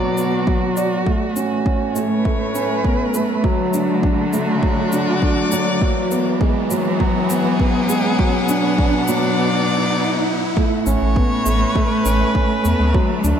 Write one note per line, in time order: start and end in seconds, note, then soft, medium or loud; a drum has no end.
0.00 1.07 B2 medium
0.00 0.47 F#3 medium
0.00 0.17 B3 medium
0.00 2.00 B3 medium
0.00 1.09 D4 medium
0.00 2.02 F#4 medium
0.00 1.07 D5 medium
0.00 riser medium
0.17 0.34 B3 medium
0.17 shaker medium
0.47 0.75 F#3 medium
0.47 kick loud
0.77 0.94 D5 medium
0.77 shaker medium
1.06 3.44 A2 medium
1.06 1.23 A3 medium
1.06 kick loud
1.36 1.53 C#4 medium
1.36 shaker medium
1.51 5.81 A3 medium
1.66 1.94 C#4 medium
1.66 kick loud
1.78 3.44 C#5 medium
1.95 2.23 A3 medium
1.95 shaker medium
2.13 4.27 B4 medium
2.25 2.53 A3 medium
2.25 kick medium
2.55 2.83 C#4 medium
2.55 shaker medium
2.84 3.02 B3 medium
2.84 kick loud
3.14 3.42 A3 medium
3.14 shaker medium
3.28 3.47 D2 medium
3.43 5.81 D3 medium
3.43 3.72 F#3 loud
3.43 kick loud
3.73 4.02 D4 medium
3.73 6.77 F#4 medium
3.73 shaker medium
4.03 4.32 D4 medium
4.03 kick loud
4.33 4.62 A3 medium
4.33 shaker medium
4.51 6.77 D5 medium
4.63 4.80 F#3 medium
4.63 kick loud
4.92 5.10 D4 medium
4.92 shaker medium
5.22 5.50 D4 medium
5.22 kick medium
5.52 5.80 F#3 medium
5.52 shaker medium
5.81 8.19 E3 medium
5.81 6.10 F#3 medium
5.81 kick medium
6.11 6.40 B3 medium
6.11 shaker medium
6.27 11.52 B3 medium
6.41 6.58 G#3 medium
6.41 kick loud
6.71 6.99 F#3 medium
6.71 shaker medium
6.89 8.99 G#4 medium
6.89 11.52 F#5 medium
7.00 7.29 F#3 loud
7.00 kick medium
7.30 7.58 B3 medium
7.30 shaker medium
7.60 7.88 B3 medium
7.60 kick loud
7.89 8.18 G#3 medium
7.89 shaker medium
8.19 10.57 B2 medium
8.19 8.36 F#3 medium
8.19 kick loud
8.49 8.66 D4 medium
8.49 shaker medium
8.78 9.07 D4 medium
8.78 kick loud
9.06 9.37 F#3 medium
9.06 10.56 D5 medium
9.06 shaker medium
10.57 12.95 A2 medium
10.57 10.85 A3 medium
10.57 kick loud
10.80 13.40 A3 medium
10.86 10.96 A1 loud
10.86 11.15 C#4 medium
10.86 12.94 C#5 medium
10.86 shaker medium
11.02 11.20 A1 medium
11.16 11.33 B3 medium
11.16 kick loud
11.28 13.40 B4 loud
11.46 11.64 A1 loud
11.46 11.74 A3 medium
11.46 shaker medium
11.75 12.04 A3 loud
11.75 kick loud
12.05 12.24 A1 loud
12.05 12.33 C#4 medium
12.05 shaker medium
12.35 12.63 C#4 medium
12.35 kick loud
12.64 12.74 E2 loud
12.64 12.93 B3 medium
12.64 shaker medium
12.79 12.98 D2 medium
12.94 13.40 D3 medium
12.94 13.11 F#3 medium
12.94 kick loud
13.24 13.33 D2 loud
13.24 13.40 D4 medium
13.24 shaker medium